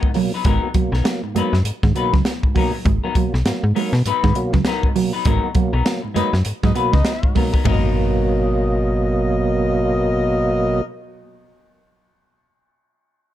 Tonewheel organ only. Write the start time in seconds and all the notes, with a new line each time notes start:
0.03 G#2
0.14 B2 F#3 A#3
0.44 G#2
0.63 F#3 A#3
0.74 B2 F#3 A#3
1.04 F#3 A#3
1.23 G#2
1.35 F#3 A#3
1.95 B2 F#3 A#3
2.26 F#3 A#3
2.43 G#2
2.54 B2 F#3 A#3
2.86 G#2
3.04 F#3 A#3
3.16 B2 F#3 A#3
3.46 F#3 A#3
3.64 G#2
3.76 F#3 A#3
4.36 B2 F#3 A#3
4.67 F#3 A#3
4.84 G#2
4.96 B2 F#3 A#3
5.27 G#2
5.44 F#3 A#3
5.55 B2 F#3 A#3
5.85 F#3 A#3
6.04 G#2
6.16 F#3 A#3
6.75 B2 F#3 A#3
7.06 F#3 A#3
7.24 G#2
7.36 B2 F#3 A#3
7.66 B2 F#3 A#3